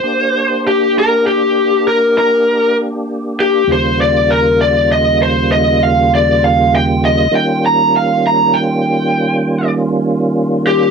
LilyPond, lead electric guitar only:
\new Staff \with { instrumentName = "Lead electric guitar" } { \time 12/8 \key ees \lydian \tempo 4. = 66 c''4 g'8 bes'8 g'4 bes'8 bes'4 r4 g'8 | c''8 d''8 bes'8 d''8 ees''8 c''8 ees''8 f''8 d''8 f''8 g''8 ees''8 | g''8 bes''8 f''8 bes''8 g''2 r4. g'8 | }